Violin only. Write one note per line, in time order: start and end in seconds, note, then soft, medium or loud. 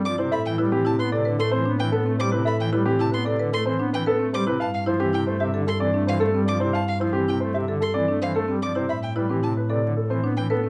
0.05 0.15 D6 medium
0.32 0.42 B5 medium
0.46 0.55 G5 medium
0.86 0.96 A5 medium
0.99 1.09 C6 medium
1.40 1.49 C6 medium
1.79 1.89 G5 medium
2.20 2.29 D6 medium
2.47 2.57 B5 medium
2.60 2.70 G5 medium
3.00 3.10 A5 medium
3.14 3.23 C6 loud
3.53 3.63 C6 loud
3.94 4.04 G5 medium
4.34 4.44 D6 loud
4.61 4.71 A5 medium
4.74 4.84 F5 medium
5.14 5.24 G5 medium
5.68 5.78 C6 medium
6.08 6.18 F5 medium
6.48 6.58 D6 medium
6.74 6.84 A5 medium
6.88 6.98 F5 medium
7.29 7.38 G5 medium
7.82 7.92 C6 medium
8.22 8.32 F5 medium
8.62 8.72 D6 medium
8.89 8.99 B5 medium
9.03 9.13 G5 medium
9.43 9.53 A5 medium
10.37 10.47 G5 medium